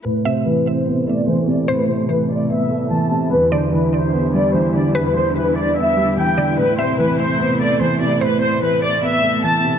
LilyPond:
<<
  \new Staff \with { instrumentName = "Synth pluck" } { \time 4/4 \key a \minor \tempo 4 = 147 r8 e''8 r2. | c''4 r2. | r8 d''8 r2. | b'4 r2 r8 d''8 |
r8 e''8 r2. | c''4 r2. | }
  \new Staff \with { instrumentName = "Violin section" } { \time 4/4 \key a \minor b'8 c''8 b'8 c''4 d''8 c''8 d''8 | b'8 c''8 b'8 d''8 e''4 a''4 | b'8 c''8 b'8 c''4 d''8 c''8 d''8 | b'8 c''8 b'8 d''8 e''4 g''4 |
b'8 c''8 b'8 c''4 d''8 c''8 d''8 | b'8 c''8 b'8 d''8 e''4 a''4 | }
  \new Staff \with { instrumentName = "String section" } { \clef bass \time 4/4 \key a \minor << { e'1~ | e'1~ | e'1~ | e'1~ |
e'1~ | e'1 | } \\ { <c a>1~ | <c a>1 | <d g>1~ | <d g>1 |
<c a>1~ | <c a>1 | } >> }
  \new Staff \with { instrumentName = "Grand piano" } { \clef bass \time 4/4 \key a \minor a,8 c8 e4 b8 a8 e8 c8 | a,8 c8 e4 b8 a8 e8 c8 | e,8 d8 e4 b8 g8 e8 d8 | e,8 d8 e4 b8 g8 e8 d8 |
a,8 c8 e4 b8 a8 e8 c8 | a,8 c8 e4 b8 a8 e8 c8 | }
>>